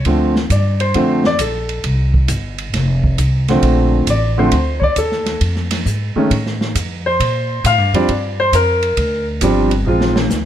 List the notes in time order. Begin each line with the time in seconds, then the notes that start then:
0.05 D2 D3 F3 A3 C4, kick, ride
0.36 snare
0.50 G2 D5, kick, hi-hat pedal, ride
0.80 C5, ride
0.94 F2 D3 F3 A3 C4, kick, ride
1.24 D5, snare
1.39 A#1 A4, kick, hi-hat pedal, ride
1.69 ride
1.84 C2, kick, ride
2.14 kick
2.28 G1, kick, hi-hat pedal, ride
2.58 ride
2.73 F1, kick, snare, ride
3.04 kick
3.18 C2, kick, hi-hat pedal, ride
3.48 D3 F3 A3 C4, snare, ride
3.62 A#1, kick, ride
4.07 A1 D5, kick, hi-hat pedal, ride
4.38 D3 F3 A3 C4 C5
4.52 D2, kick, ride
4.79 C#5 D5, kick
4.96 D#2 A4, kick, hi-hat pedal, ride
5.12 snare
5.26 snare, ride
5.41 F2, kick, ride
5.56 snare
5.71 snare, ride
5.86 G#2, kick, hi-hat pedal
6.16 D#3 G#3 A3 C#4, muted upright bass stroke
6.30 A2, kick, ride
6.46 snare
6.61 snare
6.75 F2, kick, hi-hat pedal, ride
7.06 C5
7.20 A#2, kick, ride
7.64 A2 F5, kick, hi-hat pedal, ride
7.78 G2
7.93 F2 F3 G3 C4 D4 D5, ride
8.08 G2, kick, ride
8.40 C5
8.53 F2 A#4, kick, hi-hat pedal, ride
8.82 ride
8.97 D2, kick, ride
9.41 G1 F3 G3 C4 D4, kick, hi-hat pedal, ride
9.71 ride
9.85 A#1 F3 G#3 C4 F4
10.01 snare
10.16 snare
10.30 D2, snare, hi-hat pedal